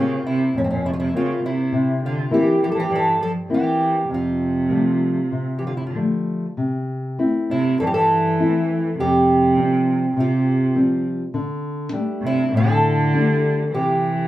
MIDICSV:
0, 0, Header, 1, 4, 480
1, 0, Start_track
1, 0, Key_signature, -1, "major"
1, 0, Tempo, 586510
1, 1413, Time_signature, 4, 2, 24, 8
1, 2859, Tempo, 606061
1, 4299, Tempo, 621118
1, 5275, Key_signature, 0, "major"
1, 6219, Tempo, 594648
1, 11450, End_track
2, 0, Start_track
2, 0, Title_t, "Twelve-string acoustic guitar"
2, 0, Program_c, 0, 25
2, 0, Note_on_c, 0, 65, 74
2, 204, Note_off_c, 0, 65, 0
2, 217, Note_on_c, 0, 64, 75
2, 463, Note_off_c, 0, 64, 0
2, 473, Note_on_c, 0, 61, 73
2, 520, Note_off_c, 0, 61, 0
2, 526, Note_on_c, 0, 60, 61
2, 573, Note_off_c, 0, 60, 0
2, 577, Note_on_c, 0, 61, 68
2, 704, Note_off_c, 0, 61, 0
2, 704, Note_on_c, 0, 64, 81
2, 750, Note_off_c, 0, 64, 0
2, 765, Note_on_c, 0, 65, 66
2, 812, Note_off_c, 0, 65, 0
2, 816, Note_on_c, 0, 64, 75
2, 931, Note_off_c, 0, 64, 0
2, 954, Note_on_c, 0, 65, 82
2, 1167, Note_off_c, 0, 65, 0
2, 1194, Note_on_c, 0, 64, 76
2, 1632, Note_off_c, 0, 64, 0
2, 1686, Note_on_c, 0, 65, 72
2, 1895, Note_off_c, 0, 65, 0
2, 1915, Note_on_c, 0, 67, 75
2, 2151, Note_off_c, 0, 67, 0
2, 2161, Note_on_c, 0, 67, 81
2, 2199, Note_off_c, 0, 67, 0
2, 2224, Note_on_c, 0, 69, 75
2, 2261, Note_off_c, 0, 69, 0
2, 2290, Note_on_c, 0, 67, 91
2, 2389, Note_off_c, 0, 67, 0
2, 2418, Note_on_c, 0, 69, 83
2, 2621, Note_off_c, 0, 69, 0
2, 2641, Note_on_c, 0, 69, 94
2, 2703, Note_off_c, 0, 69, 0
2, 2898, Note_on_c, 0, 67, 82
2, 3327, Note_off_c, 0, 67, 0
2, 3373, Note_on_c, 0, 65, 68
2, 4483, Note_off_c, 0, 65, 0
2, 4511, Note_on_c, 0, 67, 53
2, 4573, Note_off_c, 0, 67, 0
2, 4576, Note_on_c, 0, 65, 62
2, 4646, Note_off_c, 0, 65, 0
2, 4655, Note_on_c, 0, 64, 61
2, 4723, Note_off_c, 0, 64, 0
2, 4728, Note_on_c, 0, 65, 44
2, 4796, Note_off_c, 0, 65, 0
2, 6000, Note_on_c, 0, 64, 82
2, 6219, Note_off_c, 0, 64, 0
2, 6222, Note_on_c, 0, 69, 85
2, 6275, Note_off_c, 0, 69, 0
2, 6278, Note_on_c, 0, 67, 76
2, 6332, Note_off_c, 0, 67, 0
2, 6336, Note_on_c, 0, 69, 96
2, 7190, Note_off_c, 0, 69, 0
2, 7193, Note_on_c, 0, 67, 83
2, 8162, Note_on_c, 0, 65, 73
2, 8169, Note_off_c, 0, 67, 0
2, 8829, Note_off_c, 0, 65, 0
2, 9827, Note_on_c, 0, 64, 91
2, 10063, Note_off_c, 0, 64, 0
2, 10073, Note_on_c, 0, 69, 94
2, 10996, Note_off_c, 0, 69, 0
2, 11021, Note_on_c, 0, 67, 77
2, 11450, Note_off_c, 0, 67, 0
2, 11450, End_track
3, 0, Start_track
3, 0, Title_t, "Nylon-string guitar"
3, 0, Program_c, 1, 24
3, 0, Note_on_c, 1, 58, 43
3, 0, Note_on_c, 1, 60, 45
3, 355, Note_off_c, 1, 58, 0
3, 360, Note_off_c, 1, 60, 0
3, 454, Note_on_c, 1, 41, 56
3, 918, Note_off_c, 1, 41, 0
3, 930, Note_on_c, 1, 58, 41
3, 935, Note_on_c, 1, 60, 40
3, 1316, Note_off_c, 1, 58, 0
3, 1318, Note_off_c, 1, 60, 0
3, 1410, Note_on_c, 1, 48, 64
3, 1879, Note_off_c, 1, 48, 0
3, 1887, Note_on_c, 1, 58, 47
3, 1891, Note_on_c, 1, 60, 46
3, 1896, Note_on_c, 1, 64, 54
3, 2273, Note_off_c, 1, 58, 0
3, 2274, Note_off_c, 1, 60, 0
3, 2278, Note_off_c, 1, 64, 0
3, 2370, Note_on_c, 1, 43, 67
3, 2842, Note_off_c, 1, 43, 0
3, 2860, Note_on_c, 1, 58, 44
3, 2864, Note_on_c, 1, 60, 42
3, 2866, Note_on_c, 1, 64, 52
3, 3244, Note_off_c, 1, 58, 0
3, 3246, Note_off_c, 1, 60, 0
3, 3247, Note_off_c, 1, 64, 0
3, 3339, Note_on_c, 1, 41, 59
3, 3800, Note_off_c, 1, 41, 0
3, 3807, Note_on_c, 1, 53, 44
3, 3813, Note_on_c, 1, 57, 45
3, 3815, Note_on_c, 1, 55, 43
3, 4199, Note_off_c, 1, 53, 0
3, 4200, Note_off_c, 1, 55, 0
3, 4200, Note_off_c, 1, 57, 0
3, 4303, Note_on_c, 1, 48, 50
3, 4778, Note_off_c, 1, 48, 0
3, 4791, Note_on_c, 1, 53, 36
3, 4797, Note_on_c, 1, 57, 43
3, 4798, Note_on_c, 1, 55, 35
3, 5179, Note_off_c, 1, 53, 0
3, 5181, Note_off_c, 1, 55, 0
3, 5182, Note_off_c, 1, 57, 0
3, 5273, Note_on_c, 1, 48, 53
3, 5733, Note_off_c, 1, 48, 0
3, 5747, Note_on_c, 1, 57, 44
3, 5751, Note_on_c, 1, 64, 47
3, 5753, Note_on_c, 1, 60, 40
3, 6124, Note_off_c, 1, 57, 0
3, 6125, Note_off_c, 1, 60, 0
3, 6126, Note_off_c, 1, 64, 0
3, 6222, Note_on_c, 1, 43, 61
3, 6692, Note_off_c, 1, 43, 0
3, 6699, Note_on_c, 1, 57, 44
3, 6706, Note_on_c, 1, 60, 38
3, 6709, Note_on_c, 1, 64, 47
3, 7085, Note_off_c, 1, 57, 0
3, 7087, Note_off_c, 1, 60, 0
3, 7090, Note_off_c, 1, 64, 0
3, 7190, Note_on_c, 1, 41, 64
3, 7643, Note_on_c, 1, 53, 49
3, 7647, Note_off_c, 1, 41, 0
3, 7652, Note_on_c, 1, 55, 44
3, 7653, Note_on_c, 1, 60, 55
3, 8031, Note_off_c, 1, 53, 0
3, 8036, Note_off_c, 1, 60, 0
3, 8037, Note_off_c, 1, 55, 0
3, 8133, Note_on_c, 1, 48, 67
3, 8596, Note_off_c, 1, 48, 0
3, 8605, Note_on_c, 1, 53, 46
3, 8609, Note_on_c, 1, 55, 39
3, 8610, Note_on_c, 1, 60, 51
3, 8986, Note_off_c, 1, 53, 0
3, 8988, Note_off_c, 1, 60, 0
3, 8989, Note_off_c, 1, 55, 0
3, 9079, Note_on_c, 1, 50, 63
3, 9542, Note_off_c, 1, 50, 0
3, 9553, Note_on_c, 1, 55, 52
3, 9556, Note_on_c, 1, 57, 47
3, 9557, Note_on_c, 1, 62, 62
3, 9942, Note_off_c, 1, 55, 0
3, 9943, Note_off_c, 1, 57, 0
3, 9945, Note_off_c, 1, 62, 0
3, 10046, Note_on_c, 1, 45, 65
3, 10517, Note_off_c, 1, 45, 0
3, 10526, Note_on_c, 1, 55, 43
3, 10530, Note_on_c, 1, 57, 43
3, 10536, Note_on_c, 1, 62, 49
3, 10914, Note_off_c, 1, 55, 0
3, 10916, Note_off_c, 1, 57, 0
3, 10920, Note_off_c, 1, 62, 0
3, 11018, Note_on_c, 1, 48, 55
3, 11450, Note_off_c, 1, 48, 0
3, 11450, End_track
4, 0, Start_track
4, 0, Title_t, "Cello"
4, 0, Program_c, 2, 42
4, 0, Note_on_c, 2, 49, 66
4, 195, Note_off_c, 2, 49, 0
4, 220, Note_on_c, 2, 48, 70
4, 440, Note_off_c, 2, 48, 0
4, 460, Note_on_c, 2, 46, 64
4, 509, Note_off_c, 2, 46, 0
4, 525, Note_on_c, 2, 45, 56
4, 569, Note_off_c, 2, 45, 0
4, 581, Note_on_c, 2, 46, 65
4, 694, Note_off_c, 2, 46, 0
4, 699, Note_on_c, 2, 48, 61
4, 748, Note_off_c, 2, 48, 0
4, 762, Note_on_c, 2, 49, 52
4, 800, Note_off_c, 2, 49, 0
4, 805, Note_on_c, 2, 48, 62
4, 925, Note_off_c, 2, 48, 0
4, 938, Note_on_c, 2, 49, 61
4, 1159, Note_off_c, 2, 49, 0
4, 1176, Note_on_c, 2, 48, 61
4, 1623, Note_off_c, 2, 48, 0
4, 1660, Note_on_c, 2, 50, 66
4, 1881, Note_off_c, 2, 50, 0
4, 1901, Note_on_c, 2, 52, 71
4, 2121, Note_off_c, 2, 52, 0
4, 2147, Note_on_c, 2, 52, 74
4, 2192, Note_off_c, 2, 52, 0
4, 2199, Note_on_c, 2, 53, 59
4, 2245, Note_off_c, 2, 53, 0
4, 2250, Note_on_c, 2, 52, 74
4, 2367, Note_off_c, 2, 52, 0
4, 2372, Note_on_c, 2, 52, 73
4, 2596, Note_off_c, 2, 52, 0
4, 2615, Note_on_c, 2, 53, 68
4, 2725, Note_off_c, 2, 53, 0
4, 2855, Note_on_c, 2, 52, 67
4, 3306, Note_off_c, 2, 52, 0
4, 3340, Note_on_c, 2, 48, 72
4, 4467, Note_off_c, 2, 48, 0
4, 4503, Note_on_c, 2, 52, 47
4, 4568, Note_off_c, 2, 52, 0
4, 4576, Note_on_c, 2, 50, 46
4, 4639, Note_off_c, 2, 50, 0
4, 4643, Note_on_c, 2, 48, 45
4, 4712, Note_off_c, 2, 48, 0
4, 4718, Note_on_c, 2, 50, 47
4, 4786, Note_off_c, 2, 50, 0
4, 5994, Note_on_c, 2, 48, 73
4, 6207, Note_off_c, 2, 48, 0
4, 6223, Note_on_c, 2, 52, 79
4, 6270, Note_off_c, 2, 52, 0
4, 6275, Note_on_c, 2, 52, 70
4, 6312, Note_off_c, 2, 52, 0
4, 6317, Note_on_c, 2, 52, 88
4, 7145, Note_off_c, 2, 52, 0
4, 7181, Note_on_c, 2, 48, 84
4, 8101, Note_off_c, 2, 48, 0
4, 8136, Note_on_c, 2, 48, 76
4, 8816, Note_off_c, 2, 48, 0
4, 9789, Note_on_c, 2, 48, 79
4, 10020, Note_off_c, 2, 48, 0
4, 10034, Note_on_c, 2, 50, 98
4, 10976, Note_off_c, 2, 50, 0
4, 10997, Note_on_c, 2, 52, 79
4, 11450, Note_off_c, 2, 52, 0
4, 11450, End_track
0, 0, End_of_file